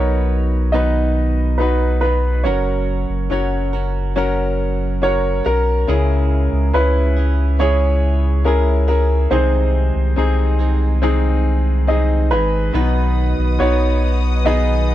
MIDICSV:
0, 0, Header, 1, 6, 480
1, 0, Start_track
1, 0, Tempo, 857143
1, 1375, Time_signature, 4, 2, 24, 8
1, 8370, End_track
2, 0, Start_track
2, 0, Title_t, "String section"
2, 0, Program_c, 0, 48
2, 7130, Note_on_c, 0, 87, 67
2, 7131, Note_on_c, 0, 71, 60
2, 7131, Note_on_c, 0, 75, 55
2, 7132, Note_on_c, 0, 78, 55
2, 8370, Note_off_c, 0, 71, 0
2, 8370, Note_off_c, 0, 75, 0
2, 8370, Note_off_c, 0, 78, 0
2, 8370, Note_off_c, 0, 87, 0
2, 8370, End_track
3, 0, Start_track
3, 0, Title_t, "Grand piano"
3, 0, Program_c, 1, 0
3, 0, Note_on_c, 1, 73, 64
3, 404, Note_on_c, 1, 75, 66
3, 424, Note_off_c, 1, 73, 0
3, 884, Note_on_c, 1, 71, 58
3, 904, Note_off_c, 1, 75, 0
3, 1117, Note_off_c, 1, 71, 0
3, 1125, Note_on_c, 1, 71, 63
3, 1364, Note_on_c, 1, 73, 63
3, 1377, Note_off_c, 1, 71, 0
3, 2307, Note_off_c, 1, 73, 0
3, 2817, Note_on_c, 1, 73, 77
3, 3039, Note_off_c, 1, 73, 0
3, 3057, Note_on_c, 1, 70, 81
3, 3754, Note_off_c, 1, 70, 0
3, 3775, Note_on_c, 1, 71, 72
3, 4233, Note_off_c, 1, 71, 0
3, 4255, Note_on_c, 1, 73, 77
3, 4734, Note_on_c, 1, 70, 69
3, 4749, Note_off_c, 1, 73, 0
3, 4966, Note_off_c, 1, 70, 0
3, 4974, Note_on_c, 1, 70, 65
3, 5212, Note_on_c, 1, 72, 68
3, 5222, Note_off_c, 1, 70, 0
3, 6151, Note_off_c, 1, 72, 0
3, 6654, Note_on_c, 1, 75, 64
3, 6893, Note_on_c, 1, 71, 83
3, 6902, Note_off_c, 1, 75, 0
3, 7615, Note_on_c, 1, 73, 72
3, 7635, Note_off_c, 1, 71, 0
3, 8096, Note_on_c, 1, 75, 75
3, 8109, Note_off_c, 1, 73, 0
3, 8370, Note_off_c, 1, 75, 0
3, 8370, End_track
4, 0, Start_track
4, 0, Title_t, "Grand piano"
4, 0, Program_c, 2, 0
4, 0, Control_c, 2, 64, 127
4, 0, Note_on_c, 2, 47, 41
4, 0, Note_on_c, 2, 63, 59
4, 0, Note_on_c, 2, 66, 51
4, 0, Note_on_c, 2, 70, 63
4, 0, Note_on_c, 2, 71, 52
4, 151, Note_off_c, 2, 47, 0
4, 389, Note_off_c, 2, 63, 0
4, 392, Note_off_c, 2, 66, 0
4, 394, Note_off_c, 2, 70, 0
4, 410, Note_on_c, 2, 63, 56
4, 414, Note_on_c, 2, 66, 50
4, 420, Note_off_c, 2, 71, 0
4, 420, Note_on_c, 2, 71, 58
4, 868, Note_off_c, 2, 63, 0
4, 870, Note_off_c, 2, 66, 0
4, 873, Note_off_c, 2, 71, 0
4, 892, Note_on_c, 2, 63, 55
4, 897, Note_on_c, 2, 66, 52
4, 900, Note_on_c, 2, 71, 62
4, 1349, Note_off_c, 2, 63, 0
4, 1352, Note_off_c, 2, 66, 0
4, 1353, Note_off_c, 2, 71, 0
4, 1369, Note_on_c, 2, 61, 50
4, 1373, Note_on_c, 2, 66, 46
4, 1379, Note_on_c, 2, 70, 55
4, 1381, Control_c, 2, 64, 0
4, 1474, Control_c, 2, 64, 127
4, 1828, Note_off_c, 2, 61, 0
4, 1830, Note_off_c, 2, 66, 0
4, 1833, Note_off_c, 2, 70, 0
4, 1850, Note_on_c, 2, 61, 53
4, 1855, Note_on_c, 2, 66, 54
4, 1860, Note_on_c, 2, 73, 65
4, 2308, Note_off_c, 2, 61, 0
4, 2311, Note_off_c, 2, 66, 0
4, 2313, Note_off_c, 2, 73, 0
4, 2329, Note_on_c, 2, 61, 71
4, 2332, Note_on_c, 2, 66, 63
4, 2338, Note_on_c, 2, 70, 80
4, 2788, Note_off_c, 2, 61, 0
4, 2790, Note_off_c, 2, 66, 0
4, 2792, Note_off_c, 2, 70, 0
4, 2810, Note_on_c, 2, 61, 58
4, 2813, Note_on_c, 2, 66, 53
4, 2819, Note_on_c, 2, 70, 67
4, 3268, Note_off_c, 2, 61, 0
4, 3270, Note_off_c, 2, 66, 0
4, 3273, Note_off_c, 2, 70, 0
4, 3289, Note_on_c, 2, 61, 52
4, 3292, Note_on_c, 2, 64, 52
4, 3294, Note_on_c, 2, 49, 46
4, 3299, Note_on_c, 2, 68, 55
4, 3302, Control_c, 2, 64, 0
4, 3397, Control_c, 2, 64, 127
4, 3748, Note_off_c, 2, 61, 0
4, 3749, Note_off_c, 2, 64, 0
4, 3753, Note_off_c, 2, 68, 0
4, 3772, Note_on_c, 2, 61, 61
4, 3777, Note_on_c, 2, 64, 54
4, 3780, Note_on_c, 2, 71, 69
4, 3992, Note_off_c, 2, 49, 0
4, 4229, Note_off_c, 2, 61, 0
4, 4232, Note_off_c, 2, 64, 0
4, 4233, Note_off_c, 2, 71, 0
4, 4250, Note_on_c, 2, 61, 59
4, 4255, Note_on_c, 2, 64, 51
4, 4261, Note_on_c, 2, 68, 64
4, 4709, Note_off_c, 2, 61, 0
4, 4711, Note_off_c, 2, 64, 0
4, 4714, Note_off_c, 2, 68, 0
4, 4730, Note_on_c, 2, 61, 55
4, 4734, Note_on_c, 2, 64, 53
4, 4740, Note_on_c, 2, 68, 65
4, 5188, Note_off_c, 2, 61, 0
4, 5190, Note_off_c, 2, 64, 0
4, 5193, Note_off_c, 2, 68, 0
4, 5212, Note_on_c, 2, 60, 48
4, 5217, Note_on_c, 2, 48, 42
4, 5218, Note_on_c, 2, 63, 46
4, 5222, Control_c, 2, 64, 0
4, 5222, Note_on_c, 2, 68, 56
4, 5315, Control_c, 2, 64, 127
4, 5669, Note_off_c, 2, 60, 0
4, 5672, Note_off_c, 2, 63, 0
4, 5674, Note_off_c, 2, 68, 0
4, 5692, Note_on_c, 2, 60, 57
4, 5695, Note_on_c, 2, 63, 54
4, 5701, Note_on_c, 2, 68, 61
4, 5913, Note_off_c, 2, 48, 0
4, 6149, Note_off_c, 2, 60, 0
4, 6151, Note_off_c, 2, 63, 0
4, 6154, Note_off_c, 2, 68, 0
4, 6170, Note_on_c, 2, 60, 73
4, 6175, Note_on_c, 2, 63, 59
4, 6178, Note_on_c, 2, 68, 74
4, 6628, Note_off_c, 2, 60, 0
4, 6631, Note_off_c, 2, 63, 0
4, 6632, Note_off_c, 2, 68, 0
4, 6649, Note_on_c, 2, 60, 57
4, 6654, Note_on_c, 2, 63, 52
4, 6658, Note_on_c, 2, 68, 64
4, 7108, Note_off_c, 2, 60, 0
4, 7110, Note_off_c, 2, 63, 0
4, 7113, Note_off_c, 2, 68, 0
4, 7130, Note_on_c, 2, 59, 47
4, 7134, Note_on_c, 2, 47, 40
4, 7136, Note_on_c, 2, 63, 51
4, 7139, Note_on_c, 2, 66, 58
4, 7140, Control_c, 2, 64, 0
4, 7253, Control_c, 2, 64, 127
4, 7588, Note_off_c, 2, 59, 0
4, 7591, Note_off_c, 2, 63, 0
4, 7593, Note_off_c, 2, 66, 0
4, 7609, Note_on_c, 2, 59, 58
4, 7614, Note_on_c, 2, 63, 55
4, 7619, Note_on_c, 2, 66, 67
4, 7832, Note_off_c, 2, 47, 0
4, 8068, Note_off_c, 2, 59, 0
4, 8070, Note_off_c, 2, 63, 0
4, 8073, Note_off_c, 2, 66, 0
4, 8089, Note_on_c, 2, 59, 62
4, 8095, Note_on_c, 2, 63, 53
4, 8101, Note_on_c, 2, 68, 65
4, 8370, Note_off_c, 2, 59, 0
4, 8370, Note_off_c, 2, 63, 0
4, 8370, Note_off_c, 2, 68, 0
4, 8370, End_track
5, 0, Start_track
5, 0, Title_t, "Clean electric guitar"
5, 0, Program_c, 3, 27
5, 0, Note_on_c, 3, 54, 46
5, 0, Note_on_c, 3, 59, 51
5, 0, Note_on_c, 3, 63, 49
5, 0, Note_on_c, 3, 71, 48
5, 409, Note_on_c, 3, 47, 62
5, 411, Note_off_c, 3, 59, 0
5, 412, Note_off_c, 3, 63, 0
5, 412, Note_on_c, 3, 51, 56
5, 413, Note_off_c, 3, 54, 0
5, 415, Note_off_c, 3, 71, 0
5, 415, Note_on_c, 3, 54, 65
5, 418, Note_on_c, 3, 59, 66
5, 419, Note_on_c, 3, 63, 67
5, 421, Note_on_c, 3, 71, 63
5, 887, Note_off_c, 3, 54, 0
5, 888, Note_off_c, 3, 59, 0
5, 889, Note_on_c, 3, 54, 44
5, 892, Note_off_c, 3, 47, 0
5, 893, Note_off_c, 3, 63, 0
5, 894, Note_off_c, 3, 51, 0
5, 895, Note_on_c, 3, 59, 45
5, 898, Note_off_c, 3, 71, 0
5, 900, Note_on_c, 3, 63, 46
5, 905, Note_on_c, 3, 71, 50
5, 1121, Note_off_c, 3, 71, 0
5, 1127, Note_off_c, 3, 63, 0
5, 1128, Note_on_c, 3, 71, 39
5, 1132, Note_off_c, 3, 54, 0
5, 1132, Note_off_c, 3, 59, 0
5, 1134, Note_on_c, 3, 63, 36
5, 1139, Note_on_c, 3, 59, 34
5, 1145, Note_on_c, 3, 54, 31
5, 1363, Note_off_c, 3, 54, 0
5, 1370, Note_on_c, 3, 54, 62
5, 1371, Note_off_c, 3, 59, 0
5, 1371, Note_off_c, 3, 71, 0
5, 1374, Note_off_c, 3, 63, 0
5, 1374, Note_on_c, 3, 61, 62
5, 1378, Note_on_c, 3, 66, 63
5, 1381, Note_on_c, 3, 70, 69
5, 1842, Note_off_c, 3, 54, 0
5, 1848, Note_on_c, 3, 54, 47
5, 1853, Note_off_c, 3, 66, 0
5, 1854, Note_off_c, 3, 61, 0
5, 1856, Note_on_c, 3, 61, 52
5, 1858, Note_off_c, 3, 70, 0
5, 1860, Note_on_c, 3, 66, 51
5, 1865, Note_on_c, 3, 70, 55
5, 2083, Note_off_c, 3, 70, 0
5, 2089, Note_on_c, 3, 70, 46
5, 2091, Note_off_c, 3, 54, 0
5, 2091, Note_off_c, 3, 66, 0
5, 2095, Note_off_c, 3, 61, 0
5, 2098, Note_on_c, 3, 66, 43
5, 2105, Note_on_c, 3, 61, 33
5, 2327, Note_off_c, 3, 61, 0
5, 2330, Note_on_c, 3, 54, 75
5, 2332, Note_off_c, 3, 66, 0
5, 2332, Note_off_c, 3, 70, 0
5, 2334, Note_on_c, 3, 61, 72
5, 2338, Note_on_c, 3, 66, 84
5, 2342, Note_on_c, 3, 70, 79
5, 2803, Note_off_c, 3, 54, 0
5, 2810, Note_on_c, 3, 54, 48
5, 2814, Note_off_c, 3, 61, 0
5, 2815, Note_off_c, 3, 66, 0
5, 2817, Note_on_c, 3, 61, 49
5, 2818, Note_off_c, 3, 70, 0
5, 2822, Note_on_c, 3, 66, 50
5, 2826, Note_on_c, 3, 70, 57
5, 3043, Note_off_c, 3, 70, 0
5, 3050, Note_on_c, 3, 70, 43
5, 3052, Note_off_c, 3, 54, 0
5, 3053, Note_off_c, 3, 66, 0
5, 3056, Note_off_c, 3, 61, 0
5, 3059, Note_on_c, 3, 66, 38
5, 3066, Note_on_c, 3, 61, 37
5, 3290, Note_off_c, 3, 61, 0
5, 3292, Note_off_c, 3, 70, 0
5, 3292, Note_on_c, 3, 49, 66
5, 3296, Note_on_c, 3, 56, 66
5, 3297, Note_off_c, 3, 66, 0
5, 3297, Note_on_c, 3, 61, 66
5, 3300, Note_on_c, 3, 64, 59
5, 3302, Note_on_c, 3, 68, 70
5, 3770, Note_off_c, 3, 56, 0
5, 3770, Note_off_c, 3, 61, 0
5, 3772, Note_on_c, 3, 56, 46
5, 3773, Note_off_c, 3, 49, 0
5, 3776, Note_off_c, 3, 64, 0
5, 3777, Note_on_c, 3, 61, 56
5, 3782, Note_on_c, 3, 64, 55
5, 3785, Note_off_c, 3, 68, 0
5, 3787, Note_on_c, 3, 68, 53
5, 4005, Note_off_c, 3, 68, 0
5, 4012, Note_on_c, 3, 68, 41
5, 4013, Note_off_c, 3, 56, 0
5, 4014, Note_off_c, 3, 64, 0
5, 4016, Note_off_c, 3, 61, 0
5, 4021, Note_on_c, 3, 64, 36
5, 4028, Note_on_c, 3, 61, 37
5, 4252, Note_off_c, 3, 61, 0
5, 4252, Note_on_c, 3, 49, 64
5, 4253, Note_off_c, 3, 68, 0
5, 4255, Note_off_c, 3, 64, 0
5, 4257, Note_on_c, 3, 56, 67
5, 4259, Note_on_c, 3, 61, 70
5, 4262, Note_on_c, 3, 64, 77
5, 4264, Note_on_c, 3, 68, 73
5, 4727, Note_off_c, 3, 56, 0
5, 4729, Note_off_c, 3, 61, 0
5, 4730, Note_on_c, 3, 56, 44
5, 4733, Note_off_c, 3, 49, 0
5, 4734, Note_off_c, 3, 64, 0
5, 4736, Note_on_c, 3, 61, 47
5, 4741, Note_on_c, 3, 64, 52
5, 4744, Note_off_c, 3, 68, 0
5, 4747, Note_on_c, 3, 68, 54
5, 4965, Note_off_c, 3, 68, 0
5, 4972, Note_off_c, 3, 56, 0
5, 4972, Note_on_c, 3, 68, 42
5, 4974, Note_off_c, 3, 64, 0
5, 4975, Note_off_c, 3, 61, 0
5, 4981, Note_on_c, 3, 64, 39
5, 4988, Note_on_c, 3, 61, 36
5, 5212, Note_on_c, 3, 48, 57
5, 5213, Note_off_c, 3, 68, 0
5, 5215, Note_on_c, 3, 51, 66
5, 5217, Note_on_c, 3, 56, 69
5, 5218, Note_off_c, 3, 61, 0
5, 5218, Note_off_c, 3, 64, 0
5, 5220, Note_on_c, 3, 60, 62
5, 5222, Note_on_c, 3, 63, 77
5, 5223, Note_on_c, 3, 68, 72
5, 5684, Note_off_c, 3, 56, 0
5, 5690, Note_off_c, 3, 60, 0
5, 5690, Note_on_c, 3, 56, 42
5, 5693, Note_off_c, 3, 48, 0
5, 5697, Note_on_c, 3, 60, 50
5, 5699, Note_off_c, 3, 63, 0
5, 5699, Note_off_c, 3, 68, 0
5, 5701, Note_on_c, 3, 63, 53
5, 5706, Note_on_c, 3, 68, 59
5, 5924, Note_off_c, 3, 68, 0
5, 5930, Note_on_c, 3, 68, 47
5, 5931, Note_off_c, 3, 63, 0
5, 5932, Note_off_c, 3, 56, 0
5, 5936, Note_off_c, 3, 60, 0
5, 5938, Note_on_c, 3, 63, 44
5, 5942, Note_on_c, 3, 60, 39
5, 5947, Note_on_c, 3, 56, 35
5, 6170, Note_off_c, 3, 56, 0
5, 6171, Note_off_c, 3, 60, 0
5, 6172, Note_on_c, 3, 48, 71
5, 6173, Note_off_c, 3, 51, 0
5, 6173, Note_off_c, 3, 68, 0
5, 6175, Note_off_c, 3, 63, 0
5, 6175, Note_on_c, 3, 51, 76
5, 6176, Note_on_c, 3, 56, 67
5, 6178, Note_on_c, 3, 60, 71
5, 6181, Note_on_c, 3, 63, 80
5, 6182, Note_on_c, 3, 68, 83
5, 6642, Note_off_c, 3, 56, 0
5, 6648, Note_off_c, 3, 60, 0
5, 6649, Note_on_c, 3, 56, 40
5, 6653, Note_off_c, 3, 48, 0
5, 6655, Note_on_c, 3, 60, 46
5, 6658, Note_off_c, 3, 63, 0
5, 6659, Note_off_c, 3, 68, 0
5, 6660, Note_on_c, 3, 63, 46
5, 6665, Note_on_c, 3, 68, 49
5, 6885, Note_off_c, 3, 68, 0
5, 6891, Note_off_c, 3, 63, 0
5, 6892, Note_off_c, 3, 56, 0
5, 6892, Note_on_c, 3, 68, 41
5, 6895, Note_off_c, 3, 60, 0
5, 6898, Note_on_c, 3, 63, 39
5, 6903, Note_on_c, 3, 60, 36
5, 6908, Note_on_c, 3, 56, 33
5, 7130, Note_on_c, 3, 47, 59
5, 7131, Note_off_c, 3, 51, 0
5, 7133, Note_off_c, 3, 56, 0
5, 7133, Note_off_c, 3, 63, 0
5, 7133, Note_off_c, 3, 68, 0
5, 7133, Note_on_c, 3, 51, 59
5, 7135, Note_off_c, 3, 60, 0
5, 7135, Note_on_c, 3, 54, 63
5, 7138, Note_on_c, 3, 59, 68
5, 7140, Note_on_c, 3, 63, 69
5, 7141, Note_on_c, 3, 71, 71
5, 7607, Note_off_c, 3, 54, 0
5, 7609, Note_off_c, 3, 59, 0
5, 7609, Note_on_c, 3, 54, 55
5, 7612, Note_off_c, 3, 47, 0
5, 7614, Note_off_c, 3, 51, 0
5, 7614, Note_off_c, 3, 63, 0
5, 7615, Note_on_c, 3, 59, 49
5, 7618, Note_off_c, 3, 71, 0
5, 7621, Note_on_c, 3, 63, 53
5, 7625, Note_on_c, 3, 71, 57
5, 8092, Note_off_c, 3, 59, 0
5, 8092, Note_on_c, 3, 47, 59
5, 8094, Note_off_c, 3, 54, 0
5, 8094, Note_off_c, 3, 63, 0
5, 8095, Note_on_c, 3, 51, 61
5, 8096, Note_off_c, 3, 71, 0
5, 8096, Note_on_c, 3, 54, 71
5, 8099, Note_on_c, 3, 59, 70
5, 8101, Note_on_c, 3, 63, 76
5, 8102, Note_on_c, 3, 71, 74
5, 8370, Note_off_c, 3, 47, 0
5, 8370, Note_off_c, 3, 51, 0
5, 8370, Note_off_c, 3, 54, 0
5, 8370, Note_off_c, 3, 59, 0
5, 8370, Note_off_c, 3, 63, 0
5, 8370, Note_off_c, 3, 71, 0
5, 8370, End_track
6, 0, Start_track
6, 0, Title_t, "Sub bass"
6, 0, Program_c, 4, 38
6, 0, Note_on_c, 4, 35, 85
6, 1373, Note_on_c, 4, 30, 89
6, 1381, Note_off_c, 4, 35, 0
6, 1711, Note_off_c, 4, 30, 0
6, 1732, Note_on_c, 4, 30, 81
6, 1845, Note_off_c, 4, 30, 0
6, 1854, Note_on_c, 4, 30, 84
6, 3032, Note_off_c, 4, 30, 0
6, 3055, Note_on_c, 4, 35, 76
6, 3278, Note_off_c, 4, 35, 0
6, 3294, Note_on_c, 4, 37, 88
6, 3632, Note_off_c, 4, 37, 0
6, 3654, Note_on_c, 4, 37, 90
6, 3766, Note_off_c, 4, 37, 0
6, 3774, Note_on_c, 4, 37, 94
6, 5192, Note_off_c, 4, 37, 0
6, 5214, Note_on_c, 4, 36, 93
6, 5552, Note_off_c, 4, 36, 0
6, 5574, Note_on_c, 4, 36, 81
6, 5686, Note_off_c, 4, 36, 0
6, 5695, Note_on_c, 4, 36, 90
6, 6893, Note_on_c, 4, 32, 76
6, 6901, Note_off_c, 4, 36, 0
6, 7117, Note_off_c, 4, 32, 0
6, 7135, Note_on_c, 4, 35, 90
6, 7472, Note_off_c, 4, 35, 0
6, 7496, Note_on_c, 4, 35, 84
6, 7607, Note_off_c, 4, 35, 0
6, 7616, Note_on_c, 4, 35, 91
6, 8370, Note_off_c, 4, 35, 0
6, 8370, End_track
0, 0, End_of_file